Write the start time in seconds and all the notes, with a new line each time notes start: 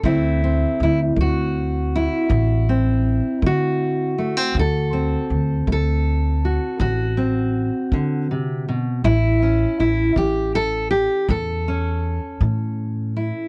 0.03 D2 D3 A3 C4 E4, kick
0.44 C4
0.80 D2 E4
1.16 D2 A3, kick
1.21 F#4
1.96 E4
2.29 A1 D3, kick
2.69 C4
3.42 D3 A3, kick
3.46 F#4
4.18 A3
4.37 C4
4.54 D2 D3, kick
4.59 A4
4.93 C4
5.30 D2
5.67 D2 A3, kick
5.72 A4
6.45 F#4
6.80 A1 D3 F#4, kick
7.17 C4
7.92 D3, kick
8.31 C3
8.69 B2
9.04 A1 A2 E4, kick
9.42 C#4
9.80 A1 E4
10.16 A1 E3 G4, kick
10.55 A4
10.91 G4
11.29 E2 A2 A4, kick
11.68 C#4
12.41 A2 E3, kick
13.17 E4